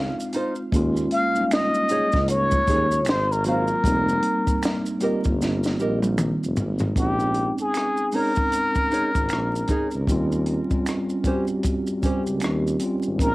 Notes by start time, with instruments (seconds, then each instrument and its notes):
Already playing: tine electric piano G#3 C4 D#4 F4, muted trumpet F5
0.20 maracas
0.33 nylon-string guitar D#4 F4 C5, closed hi-hat, maracas
0.55 maracas
0.72 tuba D#2, tine electric piano G#3 A#3 C#4, kick, closed hi-hat, maracas
0.76 tine electric piano F4
0.97 maracas
1.11 muted trumpet F5, closed hi-hat
1.34 tine electric piano G3 A#3 C#4, maracas
1.39 tine electric piano G#3 D#4
1.51 muted trumpet D#5, finger snap, snare, closed hi-hat, maracas
1.74 maracas
1.89 tuba C#2, nylon-string guitar D#4 G#4 C#5, closed hi-hat, maracas
2.12 tuba C#2, kick, snare, maracas
2.28 muted trumpet C#5, closed hi-hat, maracas
2.51 kick, maracas
2.67 tuba D#2, nylon-string guitar D#4 G#4 C#5, kick, closed hi-hat, maracas
2.91 maracas
3.05 muted trumpet C5, finger snap, closed hi-hat, maracas
3.09 tuba G#1, snare
3.32 muted trumpet A#4, maracas
3.44 tine electric piano F#3 A#3 C4, nylon-string guitar F#4 C5 F5, muted trumpet A#4, closed hi-hat, maracas
3.49 tine electric piano F4
3.68 maracas
3.83 tuba F1, tine electric piano G3 A#3 C4, kick, closed hi-hat, maracas
3.88 tine electric piano D#4
4.09 maracas
4.23 closed hi-hat
4.47 kick, maracas
4.63 finger snap, snare, closed hi-hat, maracas
4.86 maracas
5.00 tuba G1, tine electric piano G3 A#3 C4, nylon-string guitar G4 A#4 D#5, closed hi-hat, maracas
5.05 tine electric piano F4
5.24 tuba G1, kick, maracas
5.42 snare, maracas
5.64 snare, maracas
5.79 tuba A#1, nylon-string guitar G4 A#4 D#5, maracas
6.02 high tom, maracas
6.18 finger snap, mid tom, maracas
6.44 tuba F1, maracas
6.57 tuba G#1, floor tom, maracas
6.79 floor tom, maracas
6.95 tuba A#1, tine electric piano G#3 C4 C#4, muted trumpet G4, kick, closed hi-hat, maracas
7.00 tine electric piano D#4
7.20 maracas
7.34 closed hi-hat
7.58 tuba G#1, muted trumpet G#4, maracas
7.74 finger snap, cross-stick, closed hi-hat, maracas
7.97 maracas
8.12 tine electric piano G#3 C4 C#4, nylon-string guitar D#4 G#4 C#5, muted trumpet A#4, open hi-hat, maracas
8.17 tine electric piano D#4
8.35 kick, maracas
8.52 closed hi-hat, maracas
8.75 kick, maracas
8.91 tuba G#1, nylon-string guitar D#4 G#4 C#5, closed hi-hat, maracas
9.15 tuba G#1, kick, maracas
9.29 tuba A#1, finger snap, closed hi-hat, maracas
9.33 cross-stick
9.56 maracas
9.68 nylon-string guitar D#4 G#4 C#5, kick, closed hi-hat, maracas
9.91 tuba C#2, maracas
10.07 tuba D#2, tine electric piano G3 C4 C#4, kick, closed hi-hat, maracas
10.12 tine electric piano F4
10.32 maracas
10.46 closed hi-hat
10.70 tuba C#2, tine electric piano G3 C4 C#4, kick, maracas
10.74 tine electric piano F4
10.86 finger snap, cross-stick, closed hi-hat, maracas
11.09 maracas
11.24 tine electric piano G3 C4 C#4, nylon-string guitar C#4 G4 C5, kick, closed hi-hat, maracas
11.28 tine electric piano F#4
11.35 tine electric piano G4
11.48 maracas
11.63 kick, closed hi-hat, maracas
11.87 maracas
12.02 tuba C#2, tine electric piano G3 C4 C#4, nylon-string guitar C#4 G4 C5, kick, closed hi-hat, maracas
12.06 tine electric piano G4
12.27 tuba C#2, maracas
12.40 finger snap, closed hi-hat, maracas
12.44 tuba D#2, cross-stick
12.67 maracas
12.79 tine electric piano G3 C4 C#4, closed hi-hat, maracas
12.84 tine electric piano F4
13.03 maracas
13.07 tuba G#1
13.18 tuba A#1, tine electric piano G#3 C4 C#4, muted trumpet A#4, kick, closed hi-hat, maracas
13.23 tine electric piano D#4